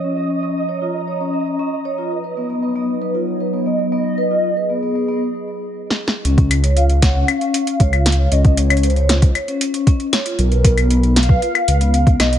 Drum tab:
HH |------------------------------------------------------------------------------------------------|------------------------------------------------------------------------------------------------|------------------------------------------------------------------------------------------------|x-----x-----x-----x-----x-----x-----x-----------x-----x-----x-----x-----x-----x-----x--x--------|
CL |------------------------------------------------------------------------------------------------|------------------------------------------------------------------------------------------------|------------------------------------------------------------------------------------------------|------------x-----------------------------------x-----------------------------x-----------------|
SD |------------------------------------------------------------------------------------------------|------------------------------------------------------------------------------------------------|--------------------------------------------------------------------------------o-------o-------|------------------------------------o-----------------------------------------------o-----------|
BD |------------------------------------------------------------------------------------------------|------------------------------------------------------------------------------------------------|------------------------------------------------------------------------------------------------|------o-----------------------------o-----------------------------------o-----------------------|

HH |x-----x-----x-----x--x--x--x--x-----x-----x-----x-----x-----x-----x-----x-----x-----x-----x-----|x-----x-----x-----x-----x-----x-----x--x--------x-----x-----x-----x-----x-----x-----x-----x-----|
CL |------------------x-----------------------------x-----------------------------------x-----------|------------------x-----------------------------------x-----------------------------x-----------|
SD |------------------------------------o-----------------------------------------------o-----------|------------------------------------o-----------------------------------------------o-----------|
BD |------o-----------------------------------o-----------------------------o-----------------------|------------o-----------------------------o-----------------------------------o-----------------|